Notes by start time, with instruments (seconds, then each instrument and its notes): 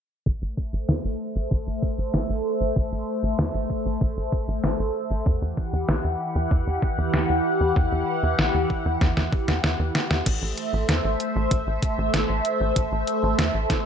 0.26 analog synth bass A1, analog synth pad A3 A4 C5 E5, kick
0.42 analog synth bass A1
0.57 kick
0.73 analog synth bass A1
0.89 analog synth bass E2, snare
1.05 analog synth bass A1
1.36 analog synth bass A1
1.51 analog synth bass A1, kick
1.67 analog synth bass A1
1.82 kick
1.98 analog synth bass A1
2.14 analog synth bass A1, snare
2.29 analog synth bass A1
2.61 analog synth bass A1
2.76 analog synth bass A1, kick
2.92 analog synth bass A1
3.23 analog synth bass A1
3.39 analog synth bass E2, snare
3.54 analog synth bass A1
3.70 kick
3.86 analog synth bass A1
4.01 analog synth bass A1, kick
4.17 analog synth bass A1
4.32 kick
4.48 analog synth bass A1
4.64 analog synth bass A1, snare
4.79 analog synth bass A1
5.11 analog synth bass A1
5.26 analog synth bass E2, analog synth pad E3 E4 G4 F#5, kick
5.42 analog synth bass E2
5.57 kick
5.73 analog synth bass E2
5.89 analog synth bass B1, snare
6.04 analog synth bass E2
6.36 analog synth bass E2
6.51 analog synth bass E2, kick
6.67 analog synth bass E2
6.82 kick
6.98 analog synth bass E2
7.14 analog synth bass E2, snare
7.30 analog synth bass E2
7.61 analog synth bass E2
7.76 analog synth bass E2, kick
7.92 analog synth bass E2
8.23 analog synth bass E2
8.39 analog synth bass B1, snare
8.54 analog synth bass E2
8.70 kick
8.86 analog synth bass E2
9.01 analog synth bass E2, kick, snare
9.17 analog synth bass E2, snare
9.33 kick
9.48 analog synth bass E2, snare
9.64 analog synth bass E2, snare
9.79 analog synth bass E2
9.95 snare
10.11 analog synth bass E2, snare
10.26 analog synth bass A1, analog synth pad A3 A4 C5 E5, kick, closed hi-hat, crash
10.42 analog synth bass A1
10.58 closed hi-hat
10.73 analog synth bass A1
10.89 analog synth bass E2, snare, closed hi-hat
11.04 analog synth bass A1
11.20 closed hi-hat
11.36 analog synth bass A1
11.51 analog synth bass A1, kick, closed hi-hat
11.67 analog synth bass A1
11.83 kick, closed hi-hat
11.98 analog synth bass A1
12.14 analog synth bass A1, snare, closed hi-hat
12.29 analog synth bass A1
12.45 closed hi-hat
12.61 analog synth bass A1
12.76 analog synth bass A1, kick, closed hi-hat
12.92 analog synth bass A1
13.07 closed hi-hat
13.23 analog synth bass A1
13.39 analog synth bass E2, snare, closed hi-hat
13.54 analog synth bass A1
13.70 kick, snare, closed hi-hat